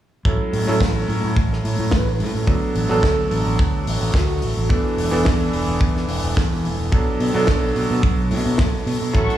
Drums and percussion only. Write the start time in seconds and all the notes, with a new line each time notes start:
0.25 kick
0.53 open hi-hat
0.80 kick, snare
1.09 open hi-hat
1.36 kick
1.53 snare
1.65 open hi-hat
1.91 kick, snare
2.20 open hi-hat
2.47 kick
2.75 open hi-hat
3.03 kick, snare
3.31 open hi-hat
3.59 kick
3.87 open hi-hat
4.14 kick, snare
4.42 open hi-hat
4.70 kick
4.98 open hi-hat
5.25 kick, snare
5.53 open hi-hat
5.81 kick
5.97 snare
6.08 open hi-hat
6.37 kick, snare
6.65 open hi-hat
6.92 kick
7.20 open hi-hat
7.47 kick, snare
7.76 open hi-hat
8.03 kick
8.31 open hi-hat
8.58 kick, snare
8.87 open hi-hat
9.14 kick, closed hi-hat
9.30 closed hi-hat